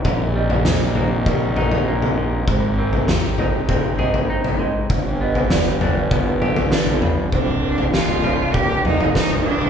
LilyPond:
<<
  \new Staff \with { instrumentName = "Felt piano" } { \time 4/4 \key c \minor \tempo 4 = 99 ees''8 ees''8 c''4 bes'4 bes'4 | c''8 bes'4 c''4 ees''8 c''8 ees''8~ | ees''8 ees''8 d''4 b'4 b'4 | c''8 bes'4 c''4 ees''8 c''8 ees'''8 | }
  \new Staff \with { instrumentName = "Analog synth pad" } { \time 4/4 \key c \minor << { bes''1~ | bes''1 | aes''1 | c'''1 | } \\ { <c' g' ees''>1 | <c' aes' g''>1 | <b g' f''>1 | <bes' c''>1 | } >> }
  \new Staff \with { instrumentName = "Cello" } { \time 4/4 \key c \minor r1 | r1 | r1 | d'4 f'4 g'8 ees'8 ees'8 d'8 | }
  \new Staff \with { instrumentName = "Clean electric guitar" } { \time 4/4 \key c \minor ees,8 g8 ees8 bes8 g8 ees'8 bes8 ees8 | aes,8 c'8 aes8 ees'8 c'8 aes'8 ees'8 aes8 | g,8 b8 g8 d'8 b8 g'8 d'8 g8 | c,4 bes8 g4 bes8 g8 bes8 | }
  \new Staff \with { instrumentName = "Fingered electric bass" } { \clef bass \time 4/4 \key c \minor bes,,1 | aes,,1 | g,,1 | c,,1 | }
  \new DrumStaff \with { instrumentName = "Drums" } \drummode { \time 4/4 <bd tomfh>8. tomfh16 <sn toml>8 tomfh8 <bd tomfh>8 tomfh16 tomfh16 r16 tomfh8. | <bd tomfh>8. tomfh16 <sn toml>8 tomfh8 <bd tomfh>8 tomfh16 tomfh16 r16 tomfh8. | <bd tomfh>8. tomfh16 <sn tomfh toml>8 <tomfh toml>8 <bd tomfh>8 tomfh16 tomfh16 sn16 tomfh16 toml8 | <bd tomfh>8. tomfh16 sn16 tomfh16 tomfh8 <bd tomfh>8 toml16 tomfh16 <bd sn>16 tomfh8 tomfh16 | }
>>